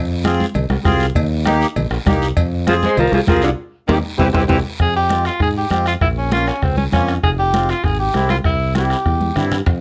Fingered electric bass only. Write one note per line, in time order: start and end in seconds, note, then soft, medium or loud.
0.00 0.43 F2 loud
0.55 0.67 C2 medium
0.70 0.76 C2 medium
0.85 1.10 C2 medium
1.15 1.64 D#2 medium
1.76 1.88 A#1 medium
1.91 1.97 A#1 medium
2.06 2.31 C2 medium
2.37 2.85 F2 loud
2.97 3.09 C2 medium
3.12 3.18 C2 medium
3.28 3.52 C2 medium
3.89 4.00 D#2 medium
4.19 4.30 C2 medium
4.34 4.46 C2 medium
4.49 4.61 C2 medium
4.80 5.28 F2 medium
5.40 5.65 G#2 medium
5.70 5.95 F2 medium
6.01 6.50 A#1 medium
6.62 6.87 C#2 medium
6.93 7.17 F2 medium
7.23 7.72 F1 medium
7.84 8.08 G#1 medium
8.14 8.39 C2 medium
8.45 8.94 C2 medium
9.06 9.30 E2 medium
9.36 9.60 G2 medium
9.66 9.81 F2 medium